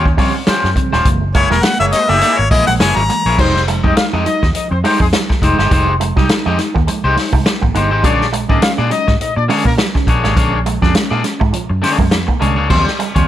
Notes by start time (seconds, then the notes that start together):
Already playing: D#2 C#4
0.05 muted clean electric guitar stroke, kick
0.18 C#3 F3 G3 C4 C#4 F4 G4 C#5, kick, open hi-hat
0.35 muted clean electric guitar stroke
0.47 F#3 G3 C4 C#4 F4 G4 C5, muted fingered electric bass stroke, snare, closed hi-hat
0.63 F#2, muted clean electric guitar stroke, snare
0.76 C#3 F3 G3 C4, muted clean electric guitar stroke, kick, closed hi-hat
0.93 D#1 G3 C#4 F4 G4 C5, snare
1.05 F#1 E3 G#3 A#3, kick, closed hi-hat
1.22 muted clean electric guitar stroke
1.34 G#3 A#3 E4 G#4 C#5, kick, closed hi-hat
1.51 E1 E3 F#3 G#3 A#3 A#4, snare
1.63 G#3 A#3 F#5, muted clean electric guitar stroke, snare, closed hi-hat
1.79 F#1 G#3 A#3 G#4 C#5 E5, muted clean electric guitar stroke
1.92 G#3 A#3 D#5, muted clean electric guitar stroke, snare, closed hi-hat
2.09 F#1 A#3 E4 G#4 D#5 E5
2.21 A#3 E4 G#4 D#5, closed hi-hat
2.38 G#1 C#5, muted clean electric guitar stroke
2.51 A#1 E3 G#3 A#3 E4 G#4 D#5, muted clean electric guitar stroke, kick, snare, open hi-hat
2.67 A#1 G#3 A#3 F#5, muted clean electric guitar stroke
2.80 F#1 A#3 E4 G#4 C#5 G#5, muted clean electric guitar stroke, snare, closed hi-hat
2.96 G#1 F#3 A#5
3.09 E3 G#3 A#3, muted clean electric guitar stroke, closed hi-hat
3.26 A#1 A#3 E4 G#4 C#5
3.38 F1 F#3 G3 G#3 C4 D#4 G4 C5, kick, crash
3.56 snare
3.68 F3 G#3, muted clean electric guitar stroke, closed hi-hat
3.84 F2 G3 G#3 D#4 G4 D#5, muted clean electric guitar stroke, kick
3.96 G#3 D#4 F4 F5, muted fingered electric bass stroke, muted clean electric guitar stroke, snare, closed hi-hat
4.13 F2 F3 G#3 D#4 G4 D#5
4.26 F#3 G#3 D#4 D#5, muted clean electric guitar stroke, closed hi-hat
4.42 D#2, muted clean electric guitar stroke, kick, snare
4.54 F3 D#4 D#5, muted fingered electric bass stroke, closed hi-hat
4.70 F2 C4 C5, muted clean electric guitar stroke
4.84 G3 G#3 D#4 G4 C5, open hi-hat
5.00 F2 G#3 G#4, muted clean electric guitar stroke, kick
5.13 F#3 G#3 D#4, muted clean electric guitar stroke, snare, closed hi-hat
5.29 F3, muted clean electric guitar stroke, kick, snare
5.42 F1 G3 G#3 D#4 G4 C5, kick, closed hi-hat
5.58 G1 G#3 D#4 G4 C5, snare
5.71 F1 G3 G#3 D#4 G4 C5, kick, closed hi-hat
5.87 muted clean electric guitar stroke
6.00 F3 G#3, muted clean electric guitar stroke, closed hi-hat
6.16 C2 F#3 G3 G#3 D#4 G4 D#5, kick, snare
6.29 G#3 D#4, muted clean electric guitar stroke, snare, closed hi-hat
6.46 F2 F3 G#3 D#4 G4 D#5
6.58 G#3 D#4, muted clean electric guitar stroke, snare, closed hi-hat
6.74 D#2 A#3, muted clean electric guitar stroke, kick
6.88 F3 G#3, muted clean electric guitar stroke, closed hi-hat
7.04 C2 G#3 D#4 G4 C5
7.16 G3 G#3 D#4, muted clean electric guitar stroke, snare, open hi-hat
7.33 C2 G#3 D#4, muted clean electric guitar stroke, kick
7.46 G#3 D#4, muted clean electric guitar stroke, snare, closed hi-hat
7.61 G#1 F3 A#3, muted clean electric guitar stroke, kick
7.74 G1 G3 G#3 A#3 D#4 G4 C5, closed hi-hat
7.91 G#1 G#3 D#4 G4 C5
8.03 A#1 D3 F#3 G#3 A#3 C#4 D4 G#4 C#5 D5, kick, closed hi-hat
8.21 snare
8.33 A#2 G#3, muted clean electric guitar stroke, closed hi-hat
8.48 G#2 D3 G#3 A#3 C#4 D4 D#4 G#4 D5 D#5, muted clean electric guitar stroke, kick
8.61 G#3 C#4 F4 F5, muted clean electric guitar stroke, muted fingered electric bass stroke, snare, closed hi-hat
8.78 A#2 G#3 A#3 D4 G#4 D5
8.90 F#3 G#3 C#4 D#4 D#5, muted clean electric guitar stroke, closed hi-hat
9.07 G#2, muted clean electric guitar stroke, kick, snare
9.20 A#2 D#4 D#5, muted fingered electric bass stroke, closed hi-hat
9.36 A#2 D4 D5, muted clean electric guitar stroke
9.48 D3 G#3 A#3 C#4 D4 G#4 C#5, open hi-hat
9.65 A#2 G#3 A#3 C#4 A#4, muted clean electric guitar stroke, kick
9.78 F#3, muted clean electric guitar stroke, snare, closed hi-hat
9.94 D3 G#3 C#4, muted clean electric guitar stroke, kick, snare
10.07 A#1 A#3 D4 G#4 C#5, kick, closed hi-hat
10.23 G#1 A#2 G#3 A#3 D4 G#4 C#5, snare
10.36 A#1 D3 G#3 A#3 C#4 D4 G#4 C#5, kick, closed hi-hat
10.53 muted clean electric guitar stroke
10.65 A#2 G#3, muted clean electric guitar stroke, closed hi-hat
10.81 F2 D3 F3 G#3 A#3 C#4 D4 G#4 D5, kick, snare
10.94 G#3 C#4, muted clean electric guitar stroke, muted fingered electric bass stroke, snare, closed hi-hat
11.11 A#2 G#3 A#3 D4 G#4 D5
11.24 G#3 C#4, muted clean electric guitar stroke, snare, closed hi-hat
11.40 G#2 G#3, muted clean electric guitar stroke, kick
11.53 A#2 F3, closed hi-hat
11.70 F#2, muted clean electric guitar stroke
11.82 D3 G#3 A#3 C#4 D4 G#4 C#5, muted clean electric guitar stroke, snare, open hi-hat
11.98 F#2 G#3 C#4, muted clean electric guitar stroke, kick
12.11 F2, muted clean electric guitar stroke, snare, closed hi-hat
12.27 A#2 A#3, muted clean electric guitar stroke, kick
12.40 C2 D3 G#3 A#3 C#4 D4 G#4 C#5, closed hi-hat
12.56 C#2 A#3 D4 G#4 C#5
12.69 D#2 C#3 F3 F#3 G3 C4 C#4 F4 C5, kick, crash
12.85 muted clean electric guitar stroke, snare
12.99 G3, muted clean electric guitar stroke, closed hi-hat
13.15 D#2 C#3 F3 G3 C4 C#4 F4 C#5, muted clean electric guitar stroke, kick, closed hi-hat